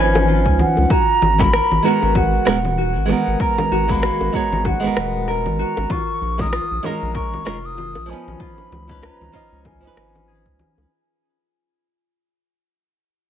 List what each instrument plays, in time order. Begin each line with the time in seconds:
Already playing: analog synth bass G#1, nylon-string guitar F3 C#4 D#4 B4, harp F4 B4 G#5, flute G#5
0.15 high bongo, low conga, shaker
0.28 harp F4, shaker
0.46 analog synth bass C#2, kick, shaker
0.59 flute F#5, low conga, shaker
0.77 analog synth bass C#2, high bongo, shaker
0.90 harp F#4, flute A#5, kick, high bongo, shaker
1.09 shaker
1.22 analog synth bass G#1, low conga, shaker
1.38 nylon-string guitar G#3 B3 F#4 A#4, flute B5, kick, high bongo, shaker
1.53 harp A#4, cross-stick, shaker
1.71 analog synth bass G#1, low conga, shaker
1.82 nylon-string guitar G#3 B3 F#4 A#4, harp F#4, flute A#5, shaker
2.02 analog synth bass G#1, high bongo, shaker
2.15 harp F#4, flute F#5, kick, low conga, shaker
2.34 shaker
2.45 analog synth bass D#1, nylon-string guitar G#3 B3 F#4 A#4, cross-stick, high bongo, shaker
2.65 low conga, shaker
2.78 harp F#4, shaker
2.96 analog synth bass G#1, shaker
3.05 nylon-string guitar G#3 B3, high bongo, low conga, shaker
3.10 nylon-string guitar F#4 A#4, flute F#5
3.27 analog synth bass G#1, shaker
3.40 harp A#4, flute A#5, kick, shaker
3.58 high bongo, low conga, shaker
3.71 analog synth bass G#1, harp F#4, shaker
3.88 nylon-string guitar G#3 A#3 B3 F#4, flute B5, kick, shaker
4.02 harp F#4, cross-stick, low conga, shaker
4.21 analog synth bass G#1, high bongo, shaker
4.32 nylon-string guitar G#3 B3 F#4 C#5, flute A#5, kick, shaker
4.52 analog synth bass G#1, low conga, shaker
4.65 harp F#4, flute F#5, kick, high bongo, shaker
4.80 nylon-string guitar G#3 B3
4.84 nylon-string guitar F#4 A#4, shaker
4.97 analog synth bass D#1, cross-stick, low conga, shaker
5.15 shaker
5.28 harp A#4, high bongo, shaker
5.46 analog synth bass G#1, low conga, shaker
5.59 harp F#4, flute A#5, shaker
5.77 analog synth bass G#1, high bongo, shaker
5.90 harp F4, flute C#6, kick, low conga, shaker
6.09 shaker
6.21 analog synth bass A#1, shaker
6.38 nylon-string guitar G#3 C#4 F4 A#4, flute D#6, kick, high bongo, low conga, shaker
6.52 harp F4, cross-stick, shaker
6.71 analog synth bass A#1, shaker
6.83 nylon-string guitar G#3 C#4 F4 A#4, flute A#5, high bongo, low conga, shaker
7.02 analog synth bass A#1, shaker
7.14 harp A#4, flute C#6, kick, shaker
7.34 low conga, shaker
7.45 analog synth bass F1, nylon-string guitar G#3 C#4 F4 A#4, harp F4, cross-stick, high bongo, shaker
7.65 flute D#6, shaker
7.77 harp F4, low conga, shaker
7.95 analog synth bass A#1, high bongo, shaker
8.06 nylon-string guitar F3 C#4
8.10 nylon-string guitar B3 D#4, flute G#5, shaker
8.27 analog synth bass A#1, low conga, shaker
8.40 harp F4, flute B5, kick, shaker
8.58 high bongo, shaker
8.72 analog synth bass C#2, low conga, shaker
8.88 nylon-string guitar F3 C#4 D#4 B4, kick, shaker
9.02 harp B4, flute A#5, cross-stick, high bongo, shaker
9.20 analog synth bass C#2, low conga, shaker
9.32 nylon-string guitar F3 C#4 D#4 D#5, harp F4, kick, shaker
9.52 analog synth bass C#2, shaker
9.65 harp F4, flute G#5, kick, high bongo, low conga, shaker
9.80 nylon-string guitar F3 C#4
9.84 nylon-string guitar D#4 B4, shaker
9.97 analog synth bass G#1, cross-stick, shaker
10.15 high bongo, low conga, shaker
10.28 harp G#4, shaker
10.46 analog synth bass C#2, kick, shaker
10.59 low conga, shaker
10.77 analog synth bass C#2, high bongo, shaker